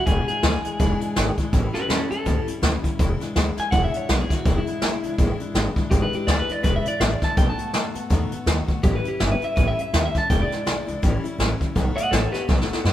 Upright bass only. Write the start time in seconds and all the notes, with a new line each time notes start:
0.07 E1
0.43 D2
0.64 muted upright bass stroke
0.80 E1
1.01 muted upright bass stroke
1.16 G#1
1.38 muted upright bass stroke
1.53 A1
1.89 E2
2.10 F#2
2.26 D2
2.47 muted upright bass stroke
2.62 D2
2.84 muted upright bass stroke
2.99 E1
3.21 muted upright bass stroke
3.36 D2
3.58 muted upright bass stroke
3.72 E1
4.09 B1
4.30 muted upright bass stroke
4.45 E1
4.81 B1
5.03 C#2
5.18 A1
5.40 muted upright bass stroke
5.54 G#1
5.76 muted upright bass stroke
5.91 G#1
6.12 muted upright bass stroke
6.27 D2
6.49 muted upright bass stroke
6.64 E1
6.85 muted upright bass stroke
7.00 A1
7.22 muted upright bass stroke
7.37 B1
7.58 muted upright bass stroke
7.73 F#2
7.95 G#2
8.10 E2
8.31 muted upright bass stroke
8.46 D#2
8.68 muted upright bass stroke
8.84 A1
9.05 muted upright bass stroke
9.20 G1
9.57 A1
9.78 muted upright bass stroke
9.93 D#2
10.14 muted upright bass stroke
10.30 E1
10.51 muted upright bass stroke
10.66 B1
10.87 C#2
11.03 A1
11.24 muted upright bass stroke
11.39 A1
11.61 muted upright bass stroke
11.75 B1
11.97 muted upright bass stroke
12.11 A1
12.33 muted upright bass stroke
12.49 B1
12.70 muted upright bass stroke
12.85 F#2